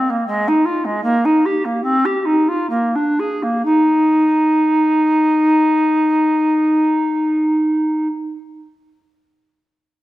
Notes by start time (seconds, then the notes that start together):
Already playing: C4
0.10 A#3
0.27 G#3
0.48 D#4
0.65 F4
0.85 G#3
1.03 A#3
1.25 D#4
1.45 G4
1.65 A#3
1.83 C4
2.05 G4
2.25 D#4
2.48 F4
2.70 A#3
2.95 D4
3.19 G#4
3.43 A#3
3.65 D#4